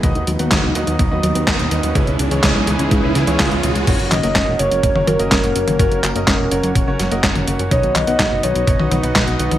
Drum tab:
CC |----------------|----------------|x---------------|----------------|
HH |xxxxx-xxx-xxxxxx|xxxxx-xxx-xxxxxx|xxxxx-xxx-xxxxxx|xxxxx-xxx-xxxxxx|
CP |----x-------x---|----x-------x---|--x-x-------x---|--x-x-------x---|
SD |----o-------o---|----o-----o-o---|----o-------o---|----o-----o-o---|
T1 |----------------|----------------|--o------oo----o|-------------o--|
BD |o---o---o---o---|o---o---o---o---|o---o---o---o---|o---o---o---o---|

CC |----------------|
HH |xxxxx-xxx-xxxxxx|
CP |--x-x-------x---|
SD |----o-------o---|
T1 |--o------oo----o|
BD |o---o---o---o---|